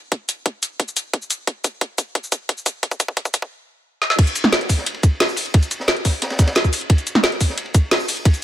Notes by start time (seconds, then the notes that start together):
0.12 kick, closed hi-hat
0.29 closed hi-hat, cabasa
0.46 kick, closed hi-hat
0.63 closed hi-hat, cabasa
0.80 kick, closed hi-hat
0.88 cabasa
0.97 closed hi-hat, cabasa
1.13 kick, closed hi-hat
1.22 cabasa
1.30 closed hi-hat, cabasa
1.47 kick, closed hi-hat
1.64 kick, closed hi-hat, cabasa
1.81 kick, closed hi-hat
1.98 kick, closed hi-hat, cabasa
2.15 kick, closed hi-hat
2.24 cabasa
2.32 kick, closed hi-hat, cabasa
2.49 kick, closed hi-hat
2.58 cabasa
2.66 kick, closed hi-hat, cabasa
2.83 kick, closed hi-hat
2.91 kick, cabasa
3.00 kick, closed hi-hat, cabasa
3.08 kick
3.17 kick, closed hi-hat
3.25 kick, cabasa
3.34 kick, closed hi-hat, cabasa
3.42 kick
4.02 snare
4.10 snare
4.18 kick, closed hi-hat, crash, ride
4.27 closed hi-hat, cabasa
4.35 closed hi-hat, ride, cabasa
4.44 snare
4.52 snare, closed hi-hat, ride
4.61 snare, closed hi-hat
4.69 kick, open hi-hat, ride, cabasa
4.78 snare
4.86 closed hi-hat, ride
4.94 ride
5.03 kick, closed hi-hat, ride, cabasa
5.20 snare, closed hi-hat, open hi-hat
5.29 cabasa
5.36 open hi-hat, ride, cabasa
5.46 closed hi-hat
5.54 kick, closed hi-hat, ride
5.63 closed hi-hat, cabasa
5.71 closed hi-hat, ride, cabasa
5.80 snare
5.88 snare, closed hi-hat, ride
5.96 closed hi-hat
6.05 kick, snare, open hi-hat, ride, cabasa
6.22 snare, closed hi-hat, ride
6.30 snare, ride
6.39 kick, snare, closed hi-hat, ride, cabasa
6.47 snare, ride
6.55 snare, closed hi-hat, ride
6.64 kick, cabasa
6.73 open hi-hat, ride, cabasa
6.81 closed hi-hat
6.90 kick, closed hi-hat, ride
6.98 closed hi-hat, cabasa
7.07 closed hi-hat, ride, cabasa
7.15 snare
7.23 snare, closed hi-hat, ride
7.32 snare, closed hi-hat
7.41 kick, open hi-hat, ride, cabasa
7.49 snare
7.58 closed hi-hat, ride
7.66 ride
7.74 kick, closed hi-hat, ride, cabasa
7.91 snare, closed hi-hat, open hi-hat
8.00 cabasa
8.08 open hi-hat, ride, cabasa
8.17 closed hi-hat
8.25 kick, closed hi-hat, ride
8.34 closed hi-hat, cabasa